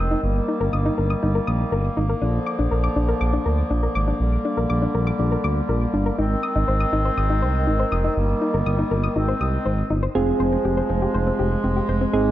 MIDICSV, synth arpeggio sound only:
0, 0, Header, 1, 2, 480
1, 0, Start_track
1, 0, Tempo, 495868
1, 226, Time_signature, 4, 2, 24, 8
1, 11919, End_track
2, 0, Start_track
2, 0, Title_t, "Synth arpeggio sound"
2, 0, Program_c, 0, 84
2, 106, Note_on_c, 0, 63, 90
2, 212, Note_off_c, 0, 63, 0
2, 466, Note_on_c, 0, 63, 87
2, 572, Note_off_c, 0, 63, 0
2, 587, Note_on_c, 0, 70, 79
2, 693, Note_off_c, 0, 70, 0
2, 707, Note_on_c, 0, 87, 83
2, 813, Note_off_c, 0, 87, 0
2, 827, Note_on_c, 0, 63, 83
2, 933, Note_off_c, 0, 63, 0
2, 947, Note_on_c, 0, 70, 76
2, 1053, Note_off_c, 0, 70, 0
2, 1067, Note_on_c, 0, 87, 78
2, 1173, Note_off_c, 0, 87, 0
2, 1186, Note_on_c, 0, 63, 82
2, 1292, Note_off_c, 0, 63, 0
2, 1306, Note_on_c, 0, 70, 78
2, 1412, Note_off_c, 0, 70, 0
2, 1426, Note_on_c, 0, 87, 83
2, 1532, Note_off_c, 0, 87, 0
2, 1666, Note_on_c, 0, 70, 76
2, 1772, Note_off_c, 0, 70, 0
2, 1906, Note_on_c, 0, 63, 87
2, 2012, Note_off_c, 0, 63, 0
2, 2026, Note_on_c, 0, 70, 79
2, 2132, Note_off_c, 0, 70, 0
2, 2146, Note_on_c, 0, 62, 90
2, 2252, Note_off_c, 0, 62, 0
2, 2385, Note_on_c, 0, 86, 82
2, 2492, Note_off_c, 0, 86, 0
2, 2505, Note_on_c, 0, 62, 87
2, 2612, Note_off_c, 0, 62, 0
2, 2626, Note_on_c, 0, 70, 81
2, 2732, Note_off_c, 0, 70, 0
2, 2745, Note_on_c, 0, 86, 80
2, 2852, Note_off_c, 0, 86, 0
2, 2866, Note_on_c, 0, 62, 87
2, 2972, Note_off_c, 0, 62, 0
2, 2986, Note_on_c, 0, 70, 74
2, 3092, Note_off_c, 0, 70, 0
2, 3105, Note_on_c, 0, 86, 80
2, 3212, Note_off_c, 0, 86, 0
2, 3226, Note_on_c, 0, 62, 88
2, 3332, Note_off_c, 0, 62, 0
2, 3346, Note_on_c, 0, 70, 78
2, 3452, Note_off_c, 0, 70, 0
2, 3586, Note_on_c, 0, 62, 87
2, 3692, Note_off_c, 0, 62, 0
2, 3707, Note_on_c, 0, 70, 73
2, 3812, Note_off_c, 0, 70, 0
2, 3826, Note_on_c, 0, 86, 82
2, 3932, Note_off_c, 0, 86, 0
2, 3946, Note_on_c, 0, 62, 87
2, 4052, Note_off_c, 0, 62, 0
2, 4306, Note_on_c, 0, 62, 89
2, 4412, Note_off_c, 0, 62, 0
2, 4426, Note_on_c, 0, 70, 80
2, 4532, Note_off_c, 0, 70, 0
2, 4546, Note_on_c, 0, 86, 82
2, 4652, Note_off_c, 0, 86, 0
2, 4666, Note_on_c, 0, 62, 89
2, 4772, Note_off_c, 0, 62, 0
2, 4787, Note_on_c, 0, 70, 76
2, 4893, Note_off_c, 0, 70, 0
2, 4906, Note_on_c, 0, 86, 82
2, 5012, Note_off_c, 0, 86, 0
2, 5026, Note_on_c, 0, 62, 85
2, 5132, Note_off_c, 0, 62, 0
2, 5147, Note_on_c, 0, 70, 80
2, 5253, Note_off_c, 0, 70, 0
2, 5266, Note_on_c, 0, 86, 84
2, 5372, Note_off_c, 0, 86, 0
2, 5506, Note_on_c, 0, 70, 75
2, 5612, Note_off_c, 0, 70, 0
2, 5746, Note_on_c, 0, 62, 88
2, 5852, Note_off_c, 0, 62, 0
2, 5866, Note_on_c, 0, 70, 81
2, 5972, Note_off_c, 0, 70, 0
2, 5986, Note_on_c, 0, 63, 87
2, 6092, Note_off_c, 0, 63, 0
2, 6225, Note_on_c, 0, 87, 83
2, 6332, Note_off_c, 0, 87, 0
2, 6345, Note_on_c, 0, 63, 89
2, 6452, Note_off_c, 0, 63, 0
2, 6465, Note_on_c, 0, 72, 82
2, 6572, Note_off_c, 0, 72, 0
2, 6585, Note_on_c, 0, 87, 79
2, 6692, Note_off_c, 0, 87, 0
2, 6706, Note_on_c, 0, 63, 83
2, 6812, Note_off_c, 0, 63, 0
2, 6826, Note_on_c, 0, 72, 76
2, 6932, Note_off_c, 0, 72, 0
2, 6945, Note_on_c, 0, 87, 81
2, 7051, Note_off_c, 0, 87, 0
2, 7064, Note_on_c, 0, 63, 89
2, 7171, Note_off_c, 0, 63, 0
2, 7185, Note_on_c, 0, 72, 82
2, 7292, Note_off_c, 0, 72, 0
2, 7425, Note_on_c, 0, 63, 87
2, 7532, Note_off_c, 0, 63, 0
2, 7545, Note_on_c, 0, 72, 76
2, 7652, Note_off_c, 0, 72, 0
2, 7665, Note_on_c, 0, 87, 84
2, 7772, Note_off_c, 0, 87, 0
2, 7786, Note_on_c, 0, 63, 90
2, 7892, Note_off_c, 0, 63, 0
2, 8145, Note_on_c, 0, 63, 86
2, 8252, Note_off_c, 0, 63, 0
2, 8265, Note_on_c, 0, 70, 76
2, 8372, Note_off_c, 0, 70, 0
2, 8386, Note_on_c, 0, 87, 82
2, 8492, Note_off_c, 0, 87, 0
2, 8506, Note_on_c, 0, 63, 85
2, 8612, Note_off_c, 0, 63, 0
2, 8626, Note_on_c, 0, 70, 74
2, 8732, Note_off_c, 0, 70, 0
2, 8745, Note_on_c, 0, 87, 77
2, 8852, Note_off_c, 0, 87, 0
2, 8866, Note_on_c, 0, 63, 84
2, 8972, Note_off_c, 0, 63, 0
2, 8986, Note_on_c, 0, 72, 77
2, 9092, Note_off_c, 0, 72, 0
2, 9106, Note_on_c, 0, 87, 84
2, 9212, Note_off_c, 0, 87, 0
2, 9346, Note_on_c, 0, 72, 76
2, 9452, Note_off_c, 0, 72, 0
2, 9586, Note_on_c, 0, 63, 89
2, 9692, Note_off_c, 0, 63, 0
2, 9706, Note_on_c, 0, 72, 81
2, 9812, Note_off_c, 0, 72, 0
2, 9826, Note_on_c, 0, 60, 90
2, 9932, Note_off_c, 0, 60, 0
2, 10066, Note_on_c, 0, 72, 85
2, 10172, Note_off_c, 0, 72, 0
2, 10186, Note_on_c, 0, 60, 91
2, 10292, Note_off_c, 0, 60, 0
2, 10307, Note_on_c, 0, 67, 81
2, 10413, Note_off_c, 0, 67, 0
2, 10427, Note_on_c, 0, 72, 83
2, 10533, Note_off_c, 0, 72, 0
2, 10547, Note_on_c, 0, 60, 86
2, 10653, Note_off_c, 0, 60, 0
2, 10667, Note_on_c, 0, 67, 76
2, 10773, Note_off_c, 0, 67, 0
2, 10787, Note_on_c, 0, 72, 82
2, 10892, Note_off_c, 0, 72, 0
2, 10907, Note_on_c, 0, 60, 90
2, 11013, Note_off_c, 0, 60, 0
2, 11026, Note_on_c, 0, 67, 82
2, 11132, Note_off_c, 0, 67, 0
2, 11266, Note_on_c, 0, 60, 88
2, 11372, Note_off_c, 0, 60, 0
2, 11387, Note_on_c, 0, 67, 74
2, 11493, Note_off_c, 0, 67, 0
2, 11507, Note_on_c, 0, 72, 83
2, 11613, Note_off_c, 0, 72, 0
2, 11627, Note_on_c, 0, 60, 90
2, 11733, Note_off_c, 0, 60, 0
2, 11919, End_track
0, 0, End_of_file